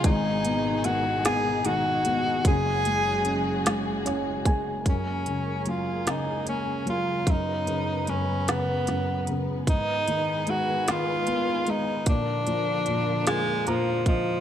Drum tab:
HH |xxxxxx|xxxxxx|xxxxxx|xxxxxx|
SD |---o--|---oo-|---o--|---oo-|
BD |o-----|o----o|o-----|o-----|

HH |xxxxxx|xxxxxx|
SD |---o--|---oo-|
BD |o-----|o----o|